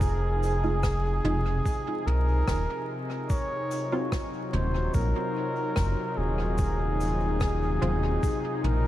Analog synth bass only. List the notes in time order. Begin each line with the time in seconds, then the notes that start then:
Already playing: F1
1.24 F1
2.07 C2
2.48 D#1
4.53 D#1
4.94 A#1
5.77 F#1
6.17 D#1
7.82 D#1
8.64 A#1